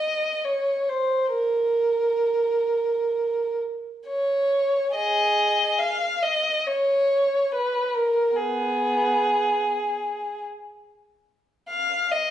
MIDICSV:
0, 0, Header, 1, 2, 480
1, 0, Start_track
1, 0, Tempo, 917431
1, 694, Time_signature, 4, 2, 24, 8
1, 1661, Tempo, 881057
1, 2621, Tempo, 862069
1, 4061, Tempo, 827586
1, 5981, Tempo, 855920
1, 6806, End_track
2, 0, Start_track
2, 0, Title_t, "Violin"
2, 0, Program_c, 0, 40
2, 0, Note_on_c, 0, 75, 53
2, 226, Note_off_c, 0, 75, 0
2, 232, Note_on_c, 0, 73, 46
2, 461, Note_off_c, 0, 73, 0
2, 462, Note_on_c, 0, 72, 45
2, 696, Note_on_c, 0, 70, 49
2, 698, Note_off_c, 0, 72, 0
2, 1882, Note_off_c, 0, 70, 0
2, 2151, Note_on_c, 0, 73, 54
2, 2602, Note_off_c, 0, 73, 0
2, 2622, Note_on_c, 0, 68, 47
2, 2625, Note_on_c, 0, 75, 58
2, 3067, Note_off_c, 0, 68, 0
2, 3091, Note_off_c, 0, 75, 0
2, 3097, Note_on_c, 0, 77, 56
2, 3333, Note_off_c, 0, 77, 0
2, 3339, Note_on_c, 0, 75, 56
2, 3584, Note_off_c, 0, 75, 0
2, 3585, Note_on_c, 0, 73, 54
2, 4066, Note_off_c, 0, 73, 0
2, 4071, Note_on_c, 0, 71, 53
2, 4303, Note_off_c, 0, 71, 0
2, 4305, Note_on_c, 0, 70, 50
2, 4544, Note_off_c, 0, 70, 0
2, 4545, Note_on_c, 0, 59, 45
2, 4547, Note_on_c, 0, 68, 57
2, 5250, Note_off_c, 0, 59, 0
2, 5749, Note_off_c, 0, 68, 0
2, 6463, Note_on_c, 0, 77, 62
2, 6685, Note_off_c, 0, 77, 0
2, 6699, Note_on_c, 0, 75, 59
2, 6806, Note_off_c, 0, 75, 0
2, 6806, End_track
0, 0, End_of_file